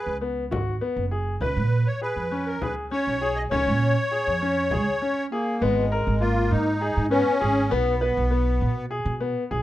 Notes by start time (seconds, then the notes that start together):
Already playing: G#4 B4
0.06 C#2
0.21 B3
0.51 G#1 F#4, frame drum
0.81 B3
0.96 F#1
1.11 G#4
1.41 C#2 B4, frame drum
1.57 A#2
1.72 frame drum
1.87 C#5
2.02 G#4 B4
2.16 F2
2.32 C#4
2.47 A#4
2.61 C#2 G#4 B4, frame drum
2.91 C#4 C#5
3.07 B1
3.22 G#4
3.36 D#5
3.51 C#2 C#4 C#5, frame drum
3.67 A#2
4.11 G#4, frame drum
4.27 F2
4.42 C#4
4.71 C#2 G#4, frame drum
5.02 C#4
5.31 A#3 G#4
5.60 G#1 G#3 B3
5.92 A#4
6.07 G#1
6.20 A#3 F4
6.50 G#2 D#4
6.81 G#4
6.97 G#2
7.10 B3 C#4
7.41 G#1 G#4
7.69 B1 B3
8.01 B4
8.17 B1
8.31 B3
8.61 B2
8.91 G#4
9.05 B2
9.20 B3
9.51 B1 G#4